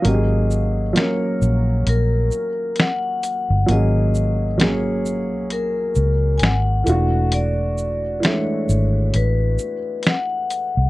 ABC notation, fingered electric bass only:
X:1
M:4/4
L:1/16
Q:"Swing 16ths" 1/4=66
K:G#m
V:1 name="Fingered electric bass" clef=bass
G,,,4 z2 A,,,2 A,,,2 z4 z =G,,, | G,,,6- G,,, B,,,3 C,,2 G,,,2 E,,,2- | E,,,4 z2 G,,,2 =A,,,2 z4 z ^B,,, |]